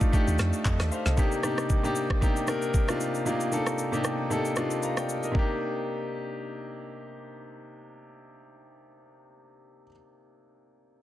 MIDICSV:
0, 0, Header, 1, 4, 480
1, 0, Start_track
1, 0, Tempo, 521739
1, 1081, Time_signature, 4, 2, 24, 8
1, 10139, End_track
2, 0, Start_track
2, 0, Title_t, "Grand piano"
2, 0, Program_c, 0, 0
2, 0, Control_c, 0, 64, 127
2, 0, Note_on_c, 0, 57, 83
2, 0, Note_on_c, 0, 62, 78
2, 0, Note_on_c, 0, 63, 78
2, 0, Note_on_c, 0, 65, 94
2, 0, Note_on_c, 0, 67, 92
2, 0, Note_on_c, 0, 69, 92
2, 113, Note_off_c, 0, 57, 0
2, 113, Note_on_c, 0, 57, 85
2, 119, Note_off_c, 0, 62, 0
2, 119, Note_on_c, 0, 62, 78
2, 124, Note_off_c, 0, 63, 0
2, 124, Note_on_c, 0, 63, 78
2, 130, Note_off_c, 0, 67, 0
2, 130, Note_on_c, 0, 67, 93
2, 410, Note_off_c, 0, 57, 0
2, 413, Note_off_c, 0, 62, 0
2, 415, Note_off_c, 0, 63, 0
2, 418, Note_off_c, 0, 67, 0
2, 601, Note_on_c, 0, 75, 66
2, 607, Note_off_c, 0, 69, 0
2, 607, Note_on_c, 0, 69, 55
2, 829, Note_off_c, 0, 75, 0
2, 832, Note_off_c, 0, 69, 0
2, 842, Note_on_c, 0, 77, 71
2, 848, Note_on_c, 0, 72, 59
2, 967, Note_off_c, 0, 77, 0
2, 970, Note_off_c, 0, 72, 0
2, 974, Note_on_c, 0, 75, 68
2, 980, Note_on_c, 0, 69, 57
2, 1076, Note_on_c, 0, 48, 82
2, 1079, Note_on_c, 0, 58, 79
2, 1083, Note_on_c, 0, 62, 75
2, 1088, Note_on_c, 0, 63, 79
2, 1092, Control_c, 0, 64, 0
2, 1092, Note_on_c, 0, 67, 93
2, 1100, Note_off_c, 0, 65, 0
2, 1202, Note_off_c, 0, 75, 0
2, 1205, Note_off_c, 0, 69, 0
2, 1272, Control_c, 0, 64, 127
2, 1275, Note_off_c, 0, 48, 0
2, 1277, Note_off_c, 0, 58, 0
2, 1279, Note_off_c, 0, 62, 0
2, 1281, Note_off_c, 0, 63, 0
2, 1283, Note_off_c, 0, 67, 0
2, 1315, Note_on_c, 0, 48, 80
2, 1319, Note_on_c, 0, 58, 76
2, 1324, Note_on_c, 0, 62, 77
2, 1328, Note_on_c, 0, 63, 73
2, 1331, Note_on_c, 0, 67, 86
2, 1611, Note_off_c, 0, 48, 0
2, 1613, Note_off_c, 0, 58, 0
2, 1615, Note_off_c, 0, 62, 0
2, 1617, Note_off_c, 0, 63, 0
2, 1619, Note_off_c, 0, 67, 0
2, 1686, Note_on_c, 0, 48, 79
2, 1690, Note_on_c, 0, 58, 78
2, 1694, Note_on_c, 0, 62, 75
2, 1698, Note_on_c, 0, 63, 80
2, 1702, Note_on_c, 0, 67, 92
2, 1973, Note_off_c, 0, 48, 0
2, 1975, Note_off_c, 0, 58, 0
2, 1977, Note_off_c, 0, 62, 0
2, 1979, Note_off_c, 0, 63, 0
2, 1981, Note_off_c, 0, 67, 0
2, 2034, Note_on_c, 0, 48, 85
2, 2038, Note_on_c, 0, 58, 74
2, 2043, Note_on_c, 0, 62, 74
2, 2046, Note_on_c, 0, 63, 79
2, 2051, Note_on_c, 0, 67, 92
2, 2234, Note_off_c, 0, 48, 0
2, 2236, Note_off_c, 0, 58, 0
2, 2239, Note_off_c, 0, 62, 0
2, 2240, Note_off_c, 0, 63, 0
2, 2243, Note_off_c, 0, 67, 0
2, 2275, Note_on_c, 0, 48, 86
2, 2279, Note_on_c, 0, 58, 75
2, 2283, Note_on_c, 0, 62, 79
2, 2287, Note_on_c, 0, 63, 76
2, 2291, Note_on_c, 0, 70, 90
2, 2570, Note_off_c, 0, 48, 0
2, 2573, Note_off_c, 0, 58, 0
2, 2575, Note_off_c, 0, 62, 0
2, 2577, Note_off_c, 0, 63, 0
2, 2579, Note_off_c, 0, 70, 0
2, 2648, Note_on_c, 0, 48, 84
2, 2652, Note_on_c, 0, 58, 78
2, 2656, Note_on_c, 0, 62, 77
2, 2660, Note_on_c, 0, 63, 78
2, 2664, Note_on_c, 0, 65, 95
2, 2933, Note_off_c, 0, 48, 0
2, 2935, Note_off_c, 0, 58, 0
2, 2938, Note_off_c, 0, 62, 0
2, 2940, Note_off_c, 0, 63, 0
2, 2941, Note_off_c, 0, 65, 0
2, 2995, Note_on_c, 0, 48, 81
2, 2999, Note_on_c, 0, 58, 77
2, 3003, Note_on_c, 0, 62, 76
2, 3006, Note_on_c, 0, 63, 78
2, 3011, Note_on_c, 0, 65, 92
2, 3195, Note_off_c, 0, 48, 0
2, 3197, Note_off_c, 0, 58, 0
2, 3199, Note_off_c, 0, 62, 0
2, 3200, Note_off_c, 0, 63, 0
2, 3203, Note_off_c, 0, 65, 0
2, 3235, Note_on_c, 0, 48, 80
2, 3239, Note_on_c, 0, 58, 71
2, 3242, Note_on_c, 0, 62, 75
2, 3247, Note_on_c, 0, 63, 73
2, 3251, Note_on_c, 0, 69, 88
2, 3531, Note_off_c, 0, 48, 0
2, 3533, Note_off_c, 0, 58, 0
2, 3534, Note_off_c, 0, 62, 0
2, 3537, Note_off_c, 0, 63, 0
2, 3539, Note_off_c, 0, 69, 0
2, 3607, Note_on_c, 0, 48, 85
2, 3611, Note_on_c, 0, 58, 74
2, 3615, Note_on_c, 0, 62, 73
2, 3620, Note_on_c, 0, 63, 75
2, 3624, Note_on_c, 0, 67, 90
2, 3893, Note_off_c, 0, 48, 0
2, 3895, Note_off_c, 0, 58, 0
2, 3897, Note_off_c, 0, 62, 0
2, 3900, Note_off_c, 0, 63, 0
2, 3901, Note_off_c, 0, 67, 0
2, 3957, Note_on_c, 0, 48, 84
2, 3961, Note_on_c, 0, 58, 77
2, 3966, Note_on_c, 0, 62, 76
2, 3970, Note_on_c, 0, 63, 75
2, 3974, Note_on_c, 0, 69, 93
2, 4156, Note_off_c, 0, 48, 0
2, 4158, Note_off_c, 0, 58, 0
2, 4160, Note_off_c, 0, 62, 0
2, 4162, Note_off_c, 0, 63, 0
2, 4164, Note_off_c, 0, 69, 0
2, 4197, Note_on_c, 0, 48, 80
2, 4201, Note_on_c, 0, 58, 73
2, 4204, Note_on_c, 0, 62, 74
2, 4209, Note_on_c, 0, 63, 76
2, 4213, Note_on_c, 0, 65, 92
2, 4444, Note_on_c, 0, 82, 63
2, 4449, Note_on_c, 0, 77, 54
2, 4492, Note_off_c, 0, 48, 0
2, 4494, Note_off_c, 0, 58, 0
2, 4495, Note_off_c, 0, 62, 0
2, 4498, Note_off_c, 0, 63, 0
2, 4500, Note_off_c, 0, 65, 0
2, 4568, Note_off_c, 0, 82, 0
2, 4571, Note_off_c, 0, 77, 0
2, 4577, Note_on_c, 0, 79, 68
2, 4583, Note_on_c, 0, 74, 58
2, 4803, Note_off_c, 0, 79, 0
2, 4806, Note_off_c, 0, 74, 0
2, 4818, Note_on_c, 0, 75, 63
2, 4823, Note_on_c, 0, 70, 54
2, 4891, Note_on_c, 0, 48, 78
2, 4908, Note_on_c, 0, 58, 70
2, 4924, Note_on_c, 0, 62, 72
2, 4934, Control_c, 0, 64, 0
2, 4941, Note_on_c, 0, 63, 74
2, 4957, Note_on_c, 0, 67, 85
2, 5044, Note_off_c, 0, 75, 0
2, 5046, Note_off_c, 0, 70, 0
2, 5095, Control_c, 0, 64, 127
2, 9048, Note_off_c, 0, 48, 0
2, 9066, Note_off_c, 0, 58, 0
2, 9082, Note_off_c, 0, 62, 0
2, 9098, Note_off_c, 0, 63, 0
2, 9115, Note_off_c, 0, 67, 0
2, 10139, End_track
3, 0, Start_track
3, 0, Title_t, "Log drum bass"
3, 0, Program_c, 1, 39
3, 252, Note_on_c, 1, 39, 98
3, 352, Note_off_c, 1, 39, 0
3, 361, Note_on_c, 1, 41, 91
3, 483, Note_off_c, 1, 41, 0
3, 601, Note_on_c, 1, 41, 96
3, 722, Note_off_c, 1, 41, 0
3, 734, Note_on_c, 1, 39, 89
3, 833, Note_off_c, 1, 39, 0
3, 974, Note_on_c, 1, 36, 86
3, 1073, Note_off_c, 1, 36, 0
3, 10139, End_track
4, 0, Start_track
4, 0, Title_t, "Drums"
4, 7, Note_on_c, 9, 82, 51
4, 11, Note_on_c, 9, 36, 86
4, 99, Note_off_c, 9, 82, 0
4, 103, Note_off_c, 9, 36, 0
4, 122, Note_on_c, 9, 36, 116
4, 122, Note_on_c, 9, 82, 78
4, 214, Note_off_c, 9, 36, 0
4, 214, Note_off_c, 9, 82, 0
4, 254, Note_on_c, 9, 82, 58
4, 346, Note_off_c, 9, 82, 0
4, 355, Note_on_c, 9, 82, 82
4, 362, Note_on_c, 9, 37, 96
4, 362, Note_on_c, 9, 38, 70
4, 447, Note_off_c, 9, 82, 0
4, 454, Note_off_c, 9, 37, 0
4, 454, Note_off_c, 9, 38, 0
4, 488, Note_on_c, 9, 82, 56
4, 580, Note_off_c, 9, 82, 0
4, 601, Note_on_c, 9, 36, 95
4, 601, Note_on_c, 9, 82, 85
4, 602, Note_on_c, 9, 39, 95
4, 693, Note_off_c, 9, 36, 0
4, 693, Note_off_c, 9, 82, 0
4, 694, Note_off_c, 9, 39, 0
4, 734, Note_on_c, 9, 37, 93
4, 734, Note_on_c, 9, 38, 69
4, 735, Note_on_c, 9, 82, 63
4, 826, Note_off_c, 9, 37, 0
4, 826, Note_off_c, 9, 38, 0
4, 827, Note_off_c, 9, 82, 0
4, 846, Note_on_c, 9, 82, 96
4, 938, Note_off_c, 9, 82, 0
4, 973, Note_on_c, 9, 38, 60
4, 974, Note_on_c, 9, 82, 47
4, 1065, Note_off_c, 9, 38, 0
4, 1066, Note_off_c, 9, 82, 0
4, 1081, Note_on_c, 9, 82, 74
4, 1082, Note_on_c, 9, 36, 110
4, 1173, Note_off_c, 9, 82, 0
4, 1174, Note_off_c, 9, 36, 0
4, 1212, Note_on_c, 9, 82, 55
4, 1304, Note_off_c, 9, 82, 0
4, 1319, Note_on_c, 9, 37, 92
4, 1321, Note_on_c, 9, 82, 88
4, 1411, Note_off_c, 9, 37, 0
4, 1413, Note_off_c, 9, 82, 0
4, 1453, Note_on_c, 9, 37, 86
4, 1454, Note_on_c, 9, 82, 57
4, 1545, Note_off_c, 9, 37, 0
4, 1546, Note_off_c, 9, 82, 0
4, 1561, Note_on_c, 9, 82, 69
4, 1563, Note_on_c, 9, 36, 84
4, 1653, Note_off_c, 9, 82, 0
4, 1655, Note_off_c, 9, 36, 0
4, 1697, Note_on_c, 9, 82, 43
4, 1789, Note_off_c, 9, 82, 0
4, 1799, Note_on_c, 9, 82, 93
4, 1891, Note_off_c, 9, 82, 0
4, 1933, Note_on_c, 9, 36, 85
4, 1937, Note_on_c, 9, 37, 99
4, 2025, Note_off_c, 9, 36, 0
4, 2029, Note_off_c, 9, 37, 0
4, 2044, Note_on_c, 9, 36, 114
4, 2046, Note_on_c, 9, 82, 79
4, 2136, Note_off_c, 9, 36, 0
4, 2138, Note_off_c, 9, 82, 0
4, 2175, Note_on_c, 9, 82, 58
4, 2267, Note_off_c, 9, 82, 0
4, 2276, Note_on_c, 9, 82, 78
4, 2283, Note_on_c, 9, 37, 90
4, 2368, Note_off_c, 9, 82, 0
4, 2375, Note_off_c, 9, 37, 0
4, 2410, Note_on_c, 9, 82, 55
4, 2502, Note_off_c, 9, 82, 0
4, 2521, Note_on_c, 9, 82, 80
4, 2522, Note_on_c, 9, 36, 96
4, 2613, Note_off_c, 9, 82, 0
4, 2614, Note_off_c, 9, 36, 0
4, 2655, Note_on_c, 9, 37, 93
4, 2655, Note_on_c, 9, 82, 62
4, 2747, Note_off_c, 9, 37, 0
4, 2747, Note_off_c, 9, 82, 0
4, 2766, Note_on_c, 9, 82, 93
4, 2858, Note_off_c, 9, 82, 0
4, 2894, Note_on_c, 9, 82, 46
4, 2986, Note_off_c, 9, 82, 0
4, 3002, Note_on_c, 9, 82, 74
4, 3094, Note_off_c, 9, 82, 0
4, 3132, Note_on_c, 9, 82, 56
4, 3224, Note_off_c, 9, 82, 0
4, 3240, Note_on_c, 9, 82, 85
4, 3332, Note_off_c, 9, 82, 0
4, 3372, Note_on_c, 9, 37, 86
4, 3373, Note_on_c, 9, 82, 56
4, 3464, Note_off_c, 9, 37, 0
4, 3465, Note_off_c, 9, 82, 0
4, 3481, Note_on_c, 9, 82, 66
4, 3573, Note_off_c, 9, 82, 0
4, 3617, Note_on_c, 9, 82, 43
4, 3709, Note_off_c, 9, 82, 0
4, 3719, Note_on_c, 9, 82, 90
4, 3722, Note_on_c, 9, 37, 91
4, 3811, Note_off_c, 9, 82, 0
4, 3814, Note_off_c, 9, 37, 0
4, 3965, Note_on_c, 9, 82, 76
4, 4057, Note_off_c, 9, 82, 0
4, 4095, Note_on_c, 9, 82, 56
4, 4187, Note_off_c, 9, 82, 0
4, 4196, Note_on_c, 9, 82, 76
4, 4203, Note_on_c, 9, 37, 95
4, 4288, Note_off_c, 9, 82, 0
4, 4295, Note_off_c, 9, 37, 0
4, 4329, Note_on_c, 9, 82, 55
4, 4421, Note_off_c, 9, 82, 0
4, 4441, Note_on_c, 9, 82, 80
4, 4533, Note_off_c, 9, 82, 0
4, 4574, Note_on_c, 9, 37, 87
4, 4574, Note_on_c, 9, 82, 60
4, 4666, Note_off_c, 9, 37, 0
4, 4666, Note_off_c, 9, 82, 0
4, 4685, Note_on_c, 9, 82, 90
4, 4777, Note_off_c, 9, 82, 0
4, 4813, Note_on_c, 9, 82, 45
4, 4905, Note_off_c, 9, 82, 0
4, 4921, Note_on_c, 9, 36, 98
4, 5013, Note_off_c, 9, 36, 0
4, 10139, End_track
0, 0, End_of_file